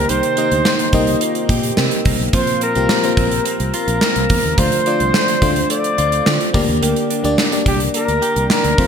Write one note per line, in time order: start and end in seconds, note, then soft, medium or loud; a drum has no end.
0.00 0.62 C3 medium
0.00 0.28 A#3 medium
0.00 0.41 A#3 medium
0.00 0.29 D#4 medium
0.00 0.29 G4 medium
0.00 0.11 A#4 medium
0.00 0.29 C5 medium
0.09 0.20 C2 medium
0.09 2.33 D#3 medium
0.09 1.49 G4 medium
0.09 1.21 C5 loud
0.09 closed hi-hat medium
0.23 closed hi-hat medium
0.37 0.85 A#3 medium
0.37 0.94 C4 medium
0.37 0.85 D#4 medium
0.37 0.85 G4 medium
0.37 0.85 D#5 medium
0.37 closed hi-hat medium
0.51 0.62 D2 medium
0.51 closed hi-hat soft
0.65 1.22 A#3 medium
0.65 0.91 D#4 medium
0.65 snare loud
0.79 closed hi-hat medium
0.93 1.14 C2 medium
0.93 1.88 A#3 medium
0.93 1.78 C4 medium
0.93 1.22 D#4 medium
0.93 1.88 D#4 medium
0.93 1.89 G4 medium
0.93 1.89 D#5 medium
0.93 kick medium
0.93 closed hi-hat medium
1.07 closed hi-hat medium
1.20 2.06 A#3 medium
1.20 1.50 F4 medium
1.20 closed hi-hat medium
1.35 closed hi-hat soft
1.48 1.70 A#2 medium
1.48 1.78 G4 medium
1.48 2.34 G4 medium
1.48 kick medium
1.48 closed hi-hat medium
1.63 closed hi-hat soft
1.76 1.88 C3 loud
1.76 2.61 C4 medium
1.76 2.16 A#4 medium
1.76 snare loud
1.91 closed hi-hat soft
2.05 2.16 C2 medium
2.05 2.65 A#3 medium
2.05 kick medium
2.05 open hi-hat medium
2.19 2.30 B1 medium
2.19 closed hi-hat soft
2.33 2.44 A#1 loud
2.33 3.14 A#2 medium
2.33 4.57 F3 medium
2.33 2.69 A#3 medium
2.33 2.69 C4 medium
2.33 2.69 F4 medium
2.33 3.73 F4 medium
2.33 2.69 C5 medium
2.33 2.61 C5 medium
2.33 kick loud
2.33 closed hi-hat medium
2.47 closed hi-hat medium
2.61 3.18 C4 medium
2.61 3.42 A#4 medium
2.61 closed hi-hat medium
2.75 2.86 C2 medium
2.75 2.99 A#3 medium
2.75 2.99 C4 medium
2.75 3.00 F4 medium
2.75 3.00 G4 medium
2.75 closed hi-hat soft
2.89 3.45 A#3 medium
2.89 snare loud
3.03 3.98 A#3 medium
3.03 3.99 C4 medium
3.03 3.99 F4 medium
3.03 3.99 C5 medium
3.03 closed hi-hat soft
3.17 3.38 A#1 medium
3.17 4.02 C4 medium
3.17 kick medium
3.17 closed hi-hat medium
3.31 closed hi-hat medium
3.45 4.29 A#3 medium
3.45 4.61 A#4 medium
3.45 closed hi-hat medium
3.60 3.70 C2 medium
3.60 closed hi-hat soft
3.74 4.58 F4 medium
3.74 closed hi-hat medium
3.88 3.98 A#1 medium
3.88 closed hi-hat soft
4.01 4.64 C4 medium
4.01 snare loud
4.16 4.27 C2 medium
4.16 closed hi-hat soft
4.30 4.41 E2 medium
4.30 4.64 A#3 medium
4.30 kick medium
4.30 open hi-hat medium
4.43 4.55 D#2 medium
4.43 closed hi-hat soft
4.58 4.68 D2 loud
4.58 5.38 D3 medium
4.58 6.60 F3 medium
4.58 4.82 A3 medium
4.58 4.82 D4 medium
4.58 4.82 F4 medium
4.58 5.97 F4 medium
4.58 4.82 C5 medium
4.58 5.70 C5 loud
4.58 kick loud
4.58 closed hi-hat medium
4.72 closed hi-hat medium
4.86 5.33 A3 medium
4.86 5.41 C4 medium
4.86 5.34 D4 medium
4.86 5.34 F4 medium
4.86 5.34 D5 medium
4.86 closed hi-hat medium
5.00 5.11 C2 medium
5.00 closed hi-hat soft
5.14 5.69 A3 medium
5.14 snare loud
5.28 closed hi-hat medium
5.42 5.63 D2 medium
5.42 6.37 A3 medium
5.42 6.25 C4 medium
5.42 6.37 D4 medium
5.42 6.37 F4 medium
5.42 6.37 C5 medium
5.42 kick medium
5.42 closed hi-hat medium
5.56 closed hi-hat medium
5.70 6.54 A3 medium
5.70 6.51 D5 medium
5.70 closed hi-hat medium
5.84 closed hi-hat soft
5.98 6.19 D2 medium
5.98 6.60 F4 medium
5.98 closed hi-hat medium
6.12 closed hi-hat soft
6.26 6.37 D3 medium
6.26 6.60 C4 medium
6.26 6.55 F4 medium
6.26 snare loud
6.40 closed hi-hat soft
6.53 6.65 D2 medium
6.53 7.34 D3 medium
6.53 7.13 A#3 medium
6.53 6.81 A#3 medium
6.53 7.13 D4 medium
6.53 6.83 G4 medium
6.53 7.13 G4 medium
6.53 7.14 D5 medium
6.53 kick loud
6.53 open hi-hat medium
6.68 6.79 D#2 medium
6.68 closed hi-hat soft
6.82 6.93 D2 medium
6.82 7.37 A#3 medium
6.82 8.21 G4 medium
6.82 7.11 A#4 loud
6.82 closed hi-hat medium
6.96 closed hi-hat medium
7.10 7.65 D4 medium
7.10 7.50 D4 medium
7.10 closed hi-hat medium
7.24 7.35 D2 medium
7.24 7.48 A#3 medium
7.24 7.48 D4 medium
7.24 7.48 G4 medium
7.24 7.48 D5 medium
7.24 closed hi-hat soft
7.38 7.93 A#3 medium
7.38 snare loud
7.52 8.47 A#3 medium
7.52 8.47 D4 medium
7.52 8.47 G4 medium
7.52 8.48 D5 medium
7.52 closed hi-hat soft
7.66 7.87 C2 medium
7.66 8.50 D4 medium
7.66 7.80 G4 medium
7.66 kick medium
7.66 closed hi-hat medium
7.80 closed hi-hat medium
7.94 8.78 A#3 medium
7.94 8.48 A#4 medium
7.94 closed hi-hat medium
8.08 8.19 D2 medium
8.08 closed hi-hat soft
8.22 8.84 G4 medium
8.22 closed hi-hat medium
8.36 8.47 C2 medium
8.36 closed hi-hat soft
8.50 8.84 D4 medium
8.50 8.87 A#4 medium
8.50 snare loud
8.64 8.75 D2 medium
8.64 closed hi-hat medium
8.78 8.87 F2 loud
8.78 8.87 A3 medium
8.78 8.87 C4 medium
8.78 8.87 F4 medium
8.78 8.87 C5 medium
8.78 kick loud
8.78 open hi-hat medium